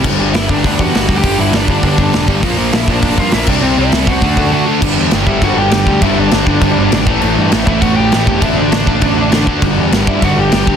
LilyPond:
<<
  \new Staff \with { instrumentName = "Lead electric guitar" } { \time 4/4 \key d \mixolydian \tempo 4 = 200 r4 <e' e''>8 <d' d''>4 <fis' fis''>4~ <fis' fis''>16 <g' g''>16~ | <g' g''>8 <e' e''>8 <d' d''>8 <d' d''>2 r8 | r4 <e' e''>8 <d' d''>4 <f' f''>8 <e' e''>8 <d' d''>8 | <c' c''>8 <e' e''>4 <fis' fis''>2 r8 |
\key a \mixolydian r4. <e' e''>8 <fis' fis''>8 <g' g''>4. | <e' e''>8 <d' d''>2. r8 | r4. <e' e''>8 <fis' fis''>8 <g' g''>4. | <e' e''>8 <d' d''>2. r8 |
r4. <e' e''>8 <fis' fis''>8 <g' g''>4. | }
  \new Staff \with { instrumentName = "Distorted electric guitar" } { \clef bass \time 4/4 \key d \mixolydian <g, d g>8 <g, d g>8 <g, d g>8 <g, d g>8 <g, d g>8 <g, d g>8 <g, d g>8 <g, d g>8 | <g, d g>8 <g, d g>8 <g, d g>8 <g, d g>8 <g, d g>8 <g, d g>8 <g, d g>8 <g, d g>8 | <bes, f bes>8 <bes, f bes>8 <bes, f bes>8 <bes, f bes>8 <bes, f bes>8 <bes, f bes>8 <bes, f bes>8 <c g c'>8 | <c g c'>8 <c g c'>8 <c g c'>8 <c g c'>8 <d a d'>8 <d a d'>8 <d a d'>8 <d a d'>8 |
\key a \mixolydian <g, d g>4 <g, d g>8 <g, d g>8 <g, d g>4 <g, d g>8 <g, d g>8 | <g, d g>4 <g, d g>8 <g, d g>8 <g, d g>4 <g, d g>8 <a, e a>8 | <a, e a>4 <a, e a>8 <a, e a>8 <a, e a>4 <a, e a>8 <a, e a>8 | <d a d'>4 <d a d'>8 <d a d'>8 <d a d'>4 <d a d'>8 <d a d'>8 |
<g, d g>4 <g, d g>8 <g, d g>8 <g, d g>4 <g, d g>8 <g, d g>8 | }
  \new Staff \with { instrumentName = "Overdriven electric guitar" } { \clef bass \time 4/4 \key d \mixolydian <g, d g>8 <g, d g>8 <g, d g>8 <g, d g>8 <g, d g>8 <g, d g>8 <g, d g>8 <g, d g>8 | <g, d g>8 <g, d g>8 <g, d g>8 <g, d g>8 <g, d g>8 <g, d g>8 <g, d g>8 <g, d g>8 | <bes, f bes>8 <bes, f bes>8 <bes, f bes>8 <bes, f bes>8 <bes, f bes>8 <bes, f bes>8 <bes, f bes>8 <c g c'>8 | <c g c'>8 <c g c'>8 <c g c'>8 <c g c'>8 <d a d'>8 <d a d'>8 <d a d'>8 <d a d'>8 |
\key a \mixolydian <g, d g>4 <g, d g>8 <g, d g>8 <g, d g>4 <g, d g>8 <g, d g>8 | <g, d g>4 <g, d g>8 <g, d g>8 <g, d g>4 <g, d g>8 <a, e a>8 | <a, e a>4 <a, e a>8 <a, e a>8 <a, e a>4 <a, e a>8 <a, e a>8 | <d a d'>4 <d a d'>8 <d a d'>8 <d a d'>4 <d a d'>8 <d a d'>8 |
<g, d g>4 <g, d g>8 <g, d g>8 <g, d g>4 <g, d g>8 <g, d g>8 | }
  \new Staff \with { instrumentName = "Overdriven electric guitar" } { \clef bass \time 4/4 \key d \mixolydian <g, d g>2 <g, d g>2 | <g, d g>2 <g, d g>2 | <bes, f bes>2 <bes, f bes>4. <c g c'>8~ | <c g c'>4. <c g c'>8 <d a d'>2 |
\key a \mixolydian <g, d g>4. <g, d g>2~ <g, d g>8 | <g, d g>4. <g, d g>2 <a, e a>8~ | <a, e a>4 <a, e a>2~ <a, e a>8 r8 | <d a d'>4. <d a d'>2~ <d a d'>8 |
<g, d g>4. <g, d g>2~ <g, d g>8 | }
  \new Staff \with { instrumentName = "Picked electric bass" } { \clef bass \time 4/4 \key d \mixolydian g,,8 g,,8 g,,8 g,,8 d,8 e,8 g,,8 d,8 | g,,8 g,,8 g,,8 g,,8 g,,8 g,,8 e,,8 g,,8 | bes,,8 bes,,8 bes,,8 bes,,8 f,,8 g,8 bes,,8 c,8 | c,8 c,8 c,8 c,8 d,8 d,8 r4 |
\key a \mixolydian g,,8 e,8 g,,8 g,,8 g,,8 g,,8 g,,8 d,8 | g,,8 g,,8 g,,8 g,,8 g,,8 g,,8 aes,,8 a,,8 | a,,8 g,8 a,,8 a,,8 a,,8 a,,8 a,,8 e,,8 | a,,8 a,,8 a,,8 a,,8 a,,8 a,,8 a,,8 d,8 |
g,,8 e,8 g,,8 g,,8 g,,8 g,,8 g,,8 d,8 | }
  \new DrumStaff \with { instrumentName = "Drums" } \drummode { \time 4/4 <cymc bd>4 <hho sn>8 bd8 <hho bd>8 bd8 <hho sn>8 bd8 | <hho bd>4 <hho sn>8 bd8 <hho bd>8 bd8 <hho sn>8 bd8 | <hho bd>4 <hho sn>8 bd8 <hho bd>8 bd8 <hho sn>8 <cymc bd>8 | r4 <hho sn>8 bd8 <hho bd>8 bd8 r4 |
<cymc bd>4 <cymc sn>8 bd8 <cymc bd>4 <cymc sn>8 bd8 | <cymc bd>4 <cymc sn>8 bd8 <cymc bd>4 <cymc sn>8 bd8 | cymc4 <cymc sn>8 bd8 <cymc bd>4 <cymc sn>8 bd8 | <cymc bd>4 <cymc sn>8 bd8 <cymc bd>4 <cymc sn>8 bd8 |
<cymc bd>4 <cymc sn>8 bd8 <cymc bd>4 <cymc sn>8 bd8 | }
>>